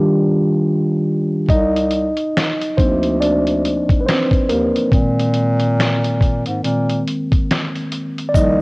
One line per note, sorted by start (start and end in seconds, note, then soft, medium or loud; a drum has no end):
0.00 1.51 D#3 medium
0.00 1.51 G3 medium
0.00 1.50 D4 medium
0.00 1.51 F4 loud
0.00 1.43 G4 medium
1.49 2.10 C2 loud
1.49 2.74 D#4 medium
1.49 2.82 D#5 loud
1.49 kick medium
1.49 closed hi-hat medium
1.76 closed hi-hat soft
1.91 closed hi-hat medium
2.17 closed hi-hat soft
2.37 finger snap medium
2.37 snare loud
2.37 closed hi-hat medium
2.61 closed hi-hat medium
2.77 3.85 D2 medium
2.77 4.88 F3 medium
2.77 4.50 A#3 medium
2.77 3.18 C4 medium
2.77 3.21 D4 medium
2.77 4.88 D#4 medium
2.77 3.21 C5 medium
2.77 kick medium
2.77 closed hi-hat medium
3.03 closed hi-hat soft
3.20 3.97 D4 medium
3.20 4.03 D5 medium
3.20 closed hi-hat medium
3.47 closed hi-hat soft
3.65 closed hi-hat medium
3.89 kick loud
3.89 closed hi-hat soft
4.01 4.06 B4 medium
4.06 4.47 C4 medium
4.06 4.50 C5 medium
4.06 finger snap medium
4.06 snare loud
4.06 closed hi-hat medium
4.31 kick medium
4.31 closed hi-hat soft
4.49 4.72 D#2 medium
4.49 5.75 A#3 medium
4.49 5.73 A#4 medium
4.49 closed hi-hat medium
4.76 closed hi-hat medium
4.92 6.42 A#2 loud
4.92 6.17 D#3 medium
4.92 6.17 G#3 soft
4.92 6.17 C4 medium
4.92 kick loud
4.92 closed hi-hat medium
5.20 closed hi-hat medium
5.34 closed hi-hat medium
5.60 closed hi-hat soft
5.80 finger snap medium
5.80 snare loud
5.80 closed hi-hat medium
6.04 closed hi-hat soft
6.21 kick medium
6.21 closed hi-hat medium
6.46 6.62 G#2 medium
6.46 closed hi-hat soft
6.64 7.02 A#2 medium
6.64 7.03 D#3 soft
6.64 7.03 G#3 soft
6.64 7.03 C4 medium
6.64 closed hi-hat medium
6.90 closed hi-hat medium
7.08 closed hi-hat medium
7.32 kick medium
7.32 closed hi-hat soft
7.51 finger snap medium
7.51 snare loud
7.51 closed hi-hat medium
7.76 closed hi-hat soft
7.92 closed hi-hat medium
8.18 closed hi-hat soft
8.29 8.34 D5 medium
8.34 8.62 C2 loud
8.34 8.62 D#3 medium
8.34 8.62 F3 medium
8.34 8.62 A#3 medium
8.34 8.62 D#4 medium
8.34 8.62 D5 medium
8.34 8.62 D#5 loud
8.34 kick loud
8.34 closed hi-hat medium
8.34 shaker medium